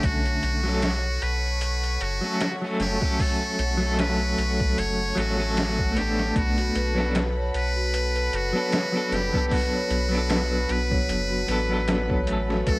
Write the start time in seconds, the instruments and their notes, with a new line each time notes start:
Already playing: clean electric guitar D3 A3 C#4 A4, violin section F#5
0.03 sub bass B1, muted trumpet F#4, violin section A4 C#5 C#6, kick, closed hi-hat
0.25 closed hi-hat
0.43 sub bass B1, closed hi-hat
0.63 clean electric guitar F#3 A3 C#4, snare
0.68 clean electric guitar A4
0.82 snare, closed hi-hat
1.22 sub bass B1, muted trumpet B4, closed hi-hat
1.61 closed hi-hat
1.83 closed hi-hat
2.01 sub bass F#1, muted trumpet F#4, closed hi-hat
2.21 clean electric guitar F#3 A3 C#4
2.26 clean electric guitar A4
2.40 snare, closed hi-hat
2.62 clean electric guitar F#3 A3 C#4
2.66 clean electric guitar A4
2.80 sub bass F#1, muted trumpet G4, snare, closed hi-hat
3.01 clean electric guitar F#3 A3 C#4, kick
3.05 clean electric guitar A4
3.19 muted trumpet A4, kick, open hi-hat
3.59 sub bass B1, closed hi-hat
3.77 clean electric guitar F#3 A3
3.83 clean electric guitar C#4 A4
3.99 muted trumpet B4, snare, closed hi-hat
4.38 sub bass B1, closed hi-hat
4.60 kick
4.77 sub bass F#1, muted trumpet C#5, closed hi-hat
5.15 sub bass A1, clean electric guitar F#3 A3 C#4, muted trumpet F#4, closed hi-hat
5.20 clean electric guitar A4
5.37 clean electric guitar F#3 A3 C#4
5.41 clean electric guitar A4
5.57 snare, closed hi-hat
5.79 kick
5.92 clean electric guitar A3 B3
5.97 clean electric guitar D4, muted trumpet G4, closed hi-hat
6.01 clean electric guitar A4
6.19 snare
6.35 sub bass B1, violin section B3 B5, muted trumpet F#4, kick, closed hi-hat
6.58 celesta F#4, closed hi-hat
6.75 sub bass B1, celesta B4, closed hi-hat
6.95 clean electric guitar F#3 B3 D4, celesta B4, snare
6.99 clean electric guitar A4
7.15 snare, closed hi-hat
7.37 celesta C#5
7.54 sub bass B1, muted trumpet B4, closed hi-hat
7.76 celesta F#4
7.94 celesta B4, closed hi-hat
8.16 celesta B4, closed hi-hat
8.33 sub bass F#1, muted trumpet F#4, closed hi-hat
8.53 clean electric guitar F#3 B3 D4, celesta C#5
8.57 clean electric guitar A4
8.72 snare, closed hi-hat
8.92 clean electric guitar F#3 B3 D4, celesta F#4
8.97 clean electric guitar A4
9.12 sub bass F#1, muted trumpet G4, celesta B4, snare, closed hi-hat
9.32 clean electric guitar F#3 B3 D4, celesta B4, kick
9.37 clean electric guitar A4
9.47 muted trumpet G4
9.51 muted trumpet F#4, kick, open hi-hat
9.73 celesta C#5
9.90 sub bass B1, closed hi-hat
10.09 clean electric guitar F#3 B3, celesta F#4
10.15 clean electric guitar D4 A4
10.30 celesta B4, snare, closed hi-hat
10.52 celesta B4
10.69 sub bass B1, muted trumpet B4, closed hi-hat
10.91 celesta C#5, kick
11.09 sub bass F#1, closed hi-hat
11.31 celesta F#4
11.47 sub bass A1, clean electric guitar F#3 B3 D4, celesta B4, closed hi-hat
11.51 clean electric guitar A4
11.69 clean electric guitar F#3 B3 D4, celesta B4
11.73 clean electric guitar A4
11.88 snare, closed hi-hat
12.10 celesta C#5, kick
12.23 clean electric guitar F#3 A3, closed hi-hat
12.30 clean electric guitar C#4 A4
12.49 celesta F#4, snare
12.66 sub bass B1, violin section A4 C#5 F#5 C#6, muted trumpet A4, celesta B4, kick, closed hi-hat